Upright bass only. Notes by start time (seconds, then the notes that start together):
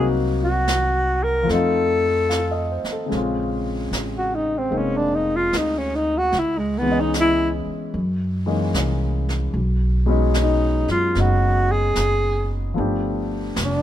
Already playing: C2
1.49 F2
2.84 muted upright bass stroke
3.12 A#1
3.91 A1
4.72 F1
5.53 D2
6.33 C#2
7.66 muted upright bass stroke
7.94 F#2
8.74 C2
9.54 B1
10.88 F#2
11.16 F#1
11.97 F#1
12.78 G1
13.57 F1